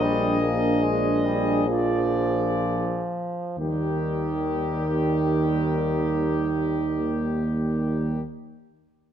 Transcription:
0.00 3.01 A#1 medium
0.00 0.41 G3 medium
0.00 1.67 D4 medium
0.00 3.01 G#4 medium
0.00 1.64 D#5 medium
0.41 0.84 A#3 medium
0.82 1.27 G#3 medium
1.25 1.70 G3 medium
1.68 3.59 F3 medium
1.68 2.63 F4 soft
1.68 3.05 D5 soft
3.58 8.20 D#2 soft
3.58 8.21 D#3 soft
3.58 8.21 G3 soft
3.58 8.20 A#3 soft
3.58 8.21 G4 soft

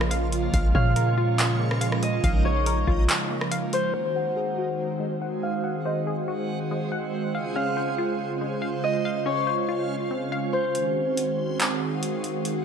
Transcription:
0.00 0.50 A#1 loud
0.00 3.90 C#3 medium
0.00 3.90 F3 medium
0.00 0.50 A#3 medium
0.00 1.18 A#3 medium
0.00 3.90 A#3 medium
0.00 3.90 C#4 medium
0.00 0.50 F4 medium
0.00 0.75 F4 medium
0.00 3.90 F4 medium
0.00 0.54 A#4 medium
0.00 0.33 C#5 medium
0.00 0.83 D#5 medium
0.00 0.28 F5 medium
0.00 cross-stick loud
0.11 0.53 F5 medium
0.11 closed hi-hat medium
0.32 closed hi-hat medium
0.54 0.74 A#1 loud
0.54 3.91 G#3 medium
0.54 3.91 D#4 medium
0.54 1.80 F5 loud
0.54 kick loud
0.54 closed hi-hat medium
0.75 2.20 A#2 loud
0.75 2.03 C#5 medium
0.75 2.42 F5 medium
0.75 kick loud
0.96 2.24 A#4 medium
0.96 closed hi-hat medium
1.18 2.45 F4 medium
1.39 clap loud
1.39 closed hi-hat medium
1.60 2.88 A#3 medium
1.71 cross-stick loud
1.81 2.23 F5 medium
1.81 closed hi-hat medium
1.92 cross-stick loud
2.03 3.81 D#5 medium
2.03 closed hi-hat medium
2.24 2.85 A#1 loud
2.24 3.50 F5 loud
2.24 kick loud
2.24 closed hi-hat medium
2.45 3.73 C#5 medium
2.45 3.79 C#5 medium
2.66 3.94 A#4 medium
2.66 closed hi-hat medium
2.87 3.08 A#1 loud
2.87 3.94 F4 medium
2.87 kick loud
3.09 clap loud
3.09 closed hi-hat medium
3.31 3.94 A#3 medium
3.41 cross-stick loud
3.51 3.94 F5 loud
3.51 closed hi-hat medium
3.73 5.71 C5 medium
3.73 closed hi-hat medium
3.94 7.31 D#3 medium
3.94 10.71 G#3 medium
3.94 7.31 C4 medium
3.94 7.31 F#4 medium
3.94 7.31 G#4 medium
3.94 10.71 C5 medium
3.94 7.31 F#5 medium
3.94 5.20 F#5 loud
4.15 5.43 C5 medium
4.15 5.49 F#5 medium
4.36 5.64 G#4 medium
4.58 5.86 F#4 medium
5.00 6.28 G#3 medium
5.22 5.63 F#5 loud
5.43 7.09 F5 medium
5.64 6.91 F#5 loud
5.85 7.13 C5 medium
5.85 7.64 D#5 medium
6.07 7.35 G#4 medium
6.28 7.34 F#4 medium
6.71 7.35 G#3 medium
6.92 7.34 F#5 medium
7.34 10.72 C#3 medium
7.34 10.72 C#4 medium
7.34 10.72 F4 medium
7.34 10.72 C5 medium
7.34 10.72 F5 medium
7.34 8.61 F5 medium
7.55 8.83 C#4 medium
7.55 9.22 F5 medium
7.77 9.05 C5 medium
7.98 9.26 F4 medium
8.41 9.69 G#3 medium
8.62 9.04 F5 medium
8.84 10.62 D#5 medium
9.05 10.31 F5 loud
9.26 10.54 C#4 medium
9.26 10.59 C#5 medium
9.47 10.75 C5 medium
9.69 10.75 F4 medium
10.11 10.75 C4 medium
10.32 10.75 F5 medium
10.53 12.51 C5 medium
10.75 12.65 D#3 medium
10.75 12.65 G#3 medium
10.75 12.65 C4 medium
10.75 12.65 F#4 medium
10.75 12.65 G#4 medium
10.75 12.65 F#5 medium
10.75 closed hi-hat medium
11.17 closed hi-hat medium
11.60 clap loud
11.60 closed hi-hat medium
12.03 closed hi-hat medium
12.24 closed hi-hat medium
12.45 closed hi-hat medium

